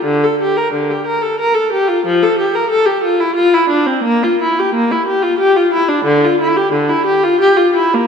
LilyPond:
\new Staff \with { instrumentName = "Viola" } { \time 3/4 \key d \minor \tempo 4 = 90 d16 a'16 g'16 bes'16 d16 g'16 bes'16 a'16 bes'16 a'16 g'16 f'16 | f16 a'16 g'16 bes'16 a'16 g'16 f'16 e'16 f'16 e'16 d'16 c'16 | bes16 f'16 e'16 g'16 bes16 e'16 g'16 f'16 g'16 f'16 e'16 d'16 | d16 f'16 e'16 g'16 d16 e'16 g'16 f'16 g'16 f'16 e'16 bes16 | }